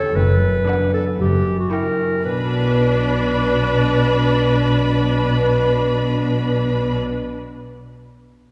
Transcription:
0.00 0.17 E3 medium
0.00 0.17 C#4 soft
0.00 0.18 G4 soft
0.00 0.17 A4 medium
0.15 0.56 F#1 medium
0.15 1.18 F#2 medium
0.15 0.56 F#2 medium
0.15 0.93 B4 medium
0.41 0.91 B3 soft
0.67 1.21 D4 soft
0.67 1.06 D4 soft
0.67 1.06 F#5 soft
0.67 1.06 B5 soft
0.93 1.21 B3 soft
0.93 1.05 A4 medium
1.19 1.61 F#1 medium
1.19 2.27 F#2 soft
1.19 1.61 F#2 soft
1.19 1.58 G4 medium
1.45 1.97 C#4 soft
1.59 1.71 F#4 soft
1.71 2.27 E4 soft
1.71 2.12 E4 soft
1.71 2.24 A#4 medium
1.71 2.11 G5 soft
1.71 2.12 C#6 soft
1.99 2.27 C#4 soft
2.24 6.97 B1 soft
2.24 6.97 B2 soft
2.24 6.98 B2 soft
2.24 6.97 D4 soft
2.24 6.96 B4 soft
2.24 6.97 B4 medium
2.24 6.97 B5 soft
2.32 7.04 B3 soft
2.39 7.11 D4 soft
2.45 7.18 F#4 soft
2.53 7.25 D5 soft

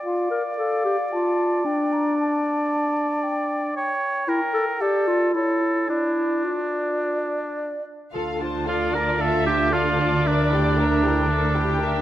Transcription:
0.00 0.29 F4 soft
0.00 3.72 D5 soft
0.05 0.58 F5 soft
0.31 0.43 A#4 soft
0.58 0.84 A4 soft
0.58 1.14 F5 soft
0.85 0.97 G4 soft
1.12 1.64 F4 soft
1.12 1.67 A5 soft
1.65 3.71 D4 soft
1.65 1.94 G5 soft
1.93 2.18 A#5 soft
2.19 3.25 A5 soft
3.23 3.75 G5 soft
3.75 4.30 C#5 soft
3.75 4.24 G5 soft
4.27 4.40 E4 soft
4.27 4.83 A#4 soft
4.27 4.83 G5 soft
4.54 4.66 A4 medium
4.81 5.09 G4 medium
4.81 5.34 A4 soft
4.81 5.34 D5 soft
5.07 5.36 F4 soft
5.34 5.88 E4 medium
5.34 5.91 A4 soft
5.34 5.92 C#5 soft
5.89 7.86 D4 soft
5.89 6.46 E4 soft
5.89 6.45 D5 soft
6.45 7.57 F4 soft
6.45 7.83 D5 soft
8.13 12.02 D2 soft
8.13 12.02 D3 soft
8.13 8.38 F4 soft
8.13 8.38 A4 soft
8.13 8.22 A4 soft
8.13 8.38 F5 soft
8.40 8.67 D4 soft
8.40 8.66 F4 soft
8.40 8.67 C5 soft
8.40 8.67 A5 soft
8.67 8.93 F4 soft
8.67 8.96 F4 soft
8.67 8.94 A4 soft
8.67 9.21 D5 soft
8.67 8.94 F5 soft
8.94 9.21 D4 soft
8.94 9.20 F4 soft
8.94 9.23 A#4 medium
8.94 9.21 A5 soft
9.21 9.45 F4 soft
9.21 9.45 A4 soft
9.21 9.46 A4 soft
9.21 9.74 E5 soft
9.21 9.45 F5 soft
9.46 9.73 D4 soft
9.46 9.72 F4 soft
9.46 9.75 G4 soft
9.46 9.74 A5 soft
9.73 9.98 F4 soft
9.73 10.28 F4 soft
9.73 10.00 A4 soft
9.73 10.77 D5 soft
9.73 10.00 F5 soft
9.99 10.25 D4 soft
9.99 10.26 F4 soft
9.99 10.26 A5 soft
10.26 10.50 D4 soft
10.26 12.02 D4 soft
10.26 10.50 A#4 soft
10.26 10.51 E5 soft
10.52 10.78 E4 soft
10.52 10.78 G4 soft
10.52 10.79 G5 soft
10.78 11.04 D4 soft
10.78 11.04 A#4 soft
10.78 11.31 A#4 soft
10.78 11.04 E5 soft
11.04 11.30 E4 soft
11.04 11.30 G4 soft
11.04 11.30 G5 soft
11.30 11.54 D4 soft
11.30 11.56 A4 soft
11.30 11.54 A#4 soft
11.30 11.54 E5 soft
11.55 11.82 E4 soft
11.55 11.82 G4 soft
11.55 12.02 G4 soft
11.55 11.82 G5 soft
11.81 12.02 D4 soft
11.81 12.02 A#4 soft
11.81 12.02 E5 soft

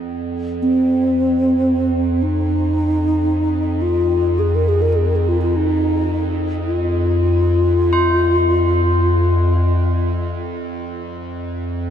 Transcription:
0.00 11.90 F2 medium
0.62 2.24 C4 medium
2.23 3.83 D#4 medium
3.82 4.41 F4 medium
4.39 4.57 G#4 medium
4.55 4.70 A#4 medium
4.68 4.83 G#4 medium
4.82 4.94 A#4 medium
4.93 5.08 G#4 medium
5.06 5.17 A#4 medium
5.16 5.25 G#4 medium
5.25 5.40 F4 medium
5.25 5.30 G#4 medium
5.42 5.58 F4 medium
5.56 6.36 D#4 medium
6.63 10.11 F4 medium
7.93 11.90 C5 medium

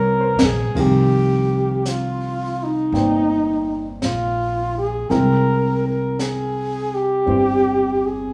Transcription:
0.00 0.37 C2 medium
0.00 0.73 E3 medium
0.00 0.74 C4 soft
0.00 0.76 C#4 medium
0.00 0.78 E4 medium
0.00 0.47 A#4 medium
0.00 0.74 A#4 medium
0.00 0.55 C#5 soft
0.21 0.99 C5 soft
0.39 0.74 A#1 medium
0.39 snare loud
0.45 0.81 G#4 medium
0.75 2.89 C2 medium
0.75 5.10 D#3 soft
0.75 5.10 F3 soft
0.75 5.09 C4 soft
0.75 5.10 F4 soft
0.75 5.10 A#4 soft
0.75 brush sweep soft
0.75 kick medium
0.75 ride medium
0.80 1.90 G4 medium
1.85 2.65 F4 medium
1.85 brush sweep soft
1.85 snare soft
1.85 hi-hat pedal medium
2.63 3.87 D#4 medium
2.92 3.97 G1 medium
2.92 5.10 A#3 soft
2.92 5.10 D5 soft
2.92 5.09 G5 soft
2.92 brush sweep soft
2.92 snare soft
2.96 5.11 C5 soft
4.02 5.07 A#1 medium
4.02 4.74 F4 medium
4.02 brush sweep soft
4.02 snare soft
4.02 hi-hat pedal soft
4.78 5.11 G#4 medium
5.10 7.22 C2 medium
5.10 8.33 G#3 soft
5.10 7.24 C4 soft
5.10 7.27 E4 soft
5.10 5.84 A#4 medium
5.10 8.33 A#4 soft
5.10 8.33 G5 soft
5.10 brush sweep soft
5.10 snare soft
5.88 6.23 A#4 medium
6.19 6.97 G#4 medium
6.19 brush sweep soft
6.19 snare soft
6.19 hi-hat pedal soft
6.95 8.07 G4 medium
7.26 8.33 G1 medium
7.26 8.33 C4 soft
7.26 8.33 D4 soft
7.26 8.33 E4 soft
7.26 8.33 C5 soft
7.26 brush sweep soft
8.05 8.33 G#4 medium

